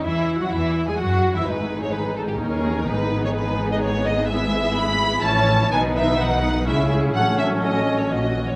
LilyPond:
<<
  \new Staff \with { instrumentName = "Violin section" } { \time 3/4 \key gis \phrygian \tempo 4 = 126 e''8. fis''16 e''8. gis''16 fis''8. e''16 | b'8. cis''16 b'8 a'16 g'8 gis'8 ais'16 | b'8. cis''16 b'8. dis''16 cis''8 dis''8 | \key fis \dorian e''4 b''4 a''4 |
gis''8 e''8 fis''4 e''8 r8 | fis''8 e''8 dis''8. cis''16 dis''8. cis''16 | }
  \new Staff \with { instrumentName = "Violin section" } { \time 3/4 \key gis \phrygian << { e'8. fis'16 e'8. gis'16 fis'8. e'16 | gis'2 ais'4 | gis'2.~ | \key fis \dorian gis'2 cis''4 |
b'2 gis'4 | a'2 fis'4 | } \\ { r2. | dis'2.~ | dis'2. | e'2. |
dis'2 e'4 | cis'2. | } >> }
  \new Staff \with { instrumentName = "Viola section" } { \time 3/4 \key gis \phrygian << { e'8. fis'16 e'8. gis'16 fis'8. e'16 | gis2 cis'4 | b2.~ | \key fis \dorian b2 cis'4 |
dis'2 cis'4~ | cis'2. | } \\ { r2. | dis2.~ | dis2. | gis2 e4 |
dis2 gis4 | fis2 e4 | } >> }
  \new Staff \with { instrumentName = "Cello section" } { \clef bass \time 3/4 \key gis \phrygian e8. fis16 e8. gis16 fis8. e16 | gis,2 dis,4 | gis,2.~ | \key fis \dorian gis,2 a,4 |
b,2 cis4 | a,2 ais,4 | }
  \new Staff \with { instrumentName = "Double bass section" } { \clef bass \time 3/4 \key gis \phrygian e,8. r16 e,8. r16 fis,8. r16 | gis,,2 dis,4 | gis,,2.~ | \key fis \dorian gis,,2 a,,4 |
b,,2 cis,4 | a,,2 ais,,4 | }
>>